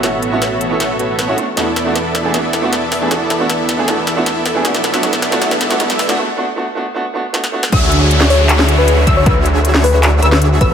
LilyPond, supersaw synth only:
\new Staff \with { instrumentName = "Supersaw synth" } { \time 4/4 \key d \lydian \tempo 4 = 156 <b fis' a' cis'' e''>2~ <b fis' a' cis'' e''>8 <b fis' a' cis'' e''>4 r8 | <b e' a' d'' e''>2 <b e' a' d'' e''>2 | <b e' a' d'' e''>2 <b e' a' d'' e''>2 | <b e' a' d'' e''>4 <b e' a' d'' e''>4 <b e' a' d'' e''>4 <b e' a' d'' e''>4 |
r1 | <d' fis' gis' cis'' e''>2.~ <d' fis' gis' cis'' e''>8 <d' fis' gis' cis'' e''>8 | <d' fis' gis' cis'' e''>2~ <d' fis' gis' cis'' e''>8 <d' fis' gis' cis'' e''>4 <b fis' a' cis'' e''>8 | }